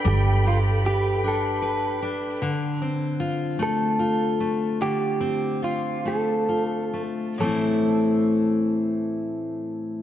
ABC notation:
X:1
M:6/8
L:1/8
Q:3/8=49
K:Am
V:1 name="String section"
[Agb]6 | z6 | z6 | z6 |]
V:2 name="Clean electric guitar"
G F G A2 z | z3 A3 | G2 F A2 z | A6 |]
V:3 name="Steel-string acoustic guitar"
[G,DGB] G B D B D | D, C F A, F A, | D, C F A, F A, | [A,,E,A,CE]6 |]
V:4 name="Fingered electric bass" clef=bass
G,,,6 | z6 | z6 | z6 |]